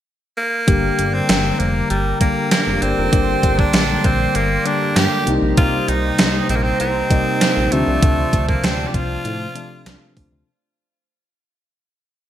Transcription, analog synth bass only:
0.68 0.91 G1 loud
0.99 1.22 G1 medium
1.30 1.52 G1 medium
1.60 1.83 F1 medium
1.91 2.13 G1 medium
2.67 2.78 F1 medium
2.82 2.94 G1 medium
2.98 3.09 F1 medium
3.13 3.36 G1 loud
3.43 3.66 G1 medium
3.74 3.97 A#1 medium
4.04 4.27 A#1 medium
4.35 4.58 G1 medium
4.96 5.08 G2 medium
5.27 5.39 C2 loud
5.42 5.54 A#1 medium
5.58 5.81 C2 loud
5.89 6.11 C2 medium
6.19 6.42 C2 medium
6.50 6.72 A#1 loud
6.80 7.03 C2 medium
7.57 7.68 A#1 medium
7.72 7.83 D2 medium
7.87 7.99 C2 medium
8.03 8.25 D2 loud
8.33 8.56 D2 loud
8.64 8.87 D2 medium
8.94 9.17 C2 medium
9.25 9.48 A2 medium
9.86 9.97 C2 medium
10.17 10.28 D2 medium
10.32 10.43 D2 medium

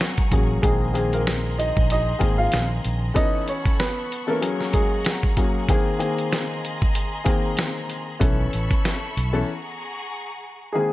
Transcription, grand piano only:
0.00 0.24 F#3 medium
0.00 0.24 A#3 medium
0.00 0.25 C#4 medium
0.00 0.25 G#4 medium
0.32 0.61 F#3 medium
0.32 0.61 A#3 medium
0.32 0.62 C#4 medium
0.32 0.62 G#4 medium
0.64 0.92 D#3 medium
0.64 0.92 A#3 medium
0.64 0.92 C4 medium
0.64 0.93 G#4 loud
0.93 2.11 D#3 medium
0.93 2.12 A#3 medium
0.93 2.12 C4 medium
0.93 2.12 G#4 loud
2.19 3.08 D#3 medium
2.19 3.08 A#3 medium
2.19 3.08 C4 medium
2.19 3.09 G#4 loud
3.14 4.03 E3 medium
3.14 4.03 B3 medium
3.14 4.03 C#4 medium
3.14 4.03 A4 medium
4.27 4.42 E3 medium
4.27 4.42 B3 medium
4.27 4.40 C#4 medium
4.27 4.42 A4 loud
4.41 5.30 F#3 medium
4.41 5.30 A#3 medium
4.41 5.30 C#4 medium
4.41 5.30 G#4 loud
5.37 5.66 F#3 medium
5.37 5.67 A#3 medium
5.37 5.67 C#4 medium
5.37 5.67 G#4 medium
5.69 5.97 D#3 medium
5.69 5.97 A#3 medium
5.69 5.98 C4 medium
5.69 5.98 G#4 loud
5.98 7.17 D#3 medium
5.98 7.17 A#3 medium
5.98 7.17 C4 medium
5.98 7.17 G#4 loud
7.24 8.13 D#3 medium
7.24 8.14 A#3 medium
7.24 8.14 C4 medium
7.24 8.14 G#4 loud
8.19 9.08 E3 medium
8.19 9.08 B3 medium
8.19 9.09 C#4 medium
8.19 9.09 A4 medium
9.32 9.47 E3 medium
9.32 9.47 B3 medium
9.32 9.47 C#4 medium
9.32 9.48 A4 loud
10.74 10.93 D#3 medium
10.74 10.93 A#3 medium
10.74 10.93 C4 medium
10.74 10.93 G#4 loud

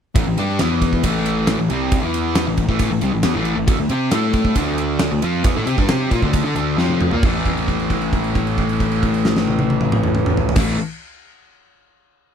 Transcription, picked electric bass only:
0.16 0.26 A1 medium
0.28 0.38 A1 medium
0.39 0.59 G2 medium
0.60 1.01 E2 medium
1.04 1.55 A1 medium
1.59 1.69 A1 medium
1.70 2.01 C2 medium
2.03 2.44 E2 medium
2.47 2.67 A1 medium
2.69 2.89 A1 medium
2.91 3.01 A1 medium
3.02 3.12 C2 medium
3.13 3.23 A1 medium
3.25 3.35 E2 medium
3.36 3.56 A1 medium
3.58 3.68 A1 medium
3.68 3.78 D2 medium
3.80 3.90 D2 medium
3.90 4.11 C3 medium
4.12 4.53 A2 medium
4.56 5.08 D2 medium
5.12 5.22 D2 medium
5.23 5.44 F2 medium
5.45 5.55 E2 medium
5.56 5.66 A2 medium
5.67 5.77 C3 medium
5.78 5.88 G2 medium
5.89 6.10 C3 medium
6.11 6.22 A#2 medium
6.23 6.44 D2 medium
6.44 6.55 D3 medium
6.55 6.77 D2 medium
6.78 7.10 F2 medium
7.12 7.23 A#2 medium
7.23 10.47 A1 medium
10.56 10.75 A1 medium

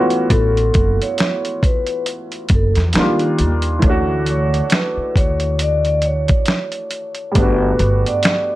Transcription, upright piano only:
0.00 2.89 E3 medium
0.00 2.90 A3 medium
0.00 2.91 B3 medium
0.00 2.93 C#4 medium
0.00 2.97 F4 medium
0.00 2.97 F#4 medium
2.94 3.82 D#3 medium
2.94 3.02 F3 soft
2.94 3.84 A#3 medium
2.98 3.86 G3 medium
2.98 3.84 D4 medium
2.98 3.85 F4 medium
3.79 7.30 E3 medium
3.79 7.31 A3 medium
3.84 7.32 C#4 medium
3.84 7.34 D4 medium
3.89 7.35 F#4 medium
7.32 8.55 G3 medium
7.32 8.55 A3 medium
7.37 8.55 B3 medium
7.37 8.55 D4 medium
7.42 8.55 F#4 medium

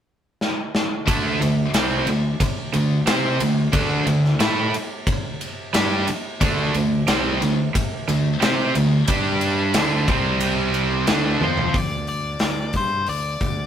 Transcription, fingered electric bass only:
1.08 1.38 D2 loud
1.41 1.71 D2 medium
1.74 2.05 C2 medium
2.07 2.38 D2 medium
2.74 3.05 D2 medium
3.08 3.38 C3 medium
3.40 3.71 D2 medium
3.74 4.05 D2 loud
4.06 4.38 D2 medium
4.40 4.71 A2 loud
5.75 6.05 G2 medium
6.08 muted fingered electric bass stroke soft
6.41 6.72 D2 medium
6.75 7.06 D2 medium
7.09 7.39 C2 medium
7.41 7.72 D2 medium
8.08 8.39 D2 medium
8.42 8.72 C3 medium
8.75 9.06 D2 medium
9.09 9.71 G2 medium
9.74 10.06 D2 medium
10.08 11.04 C2 medium
11.08 11.39 D2 medium
11.41 11.72 F2 medium
11.74 12.37 D2 medium
12.42 12.73 D2 medium
12.74 13.05 G2 medium
13.08 13.39 D2 medium
13.41 13.66 D2 medium

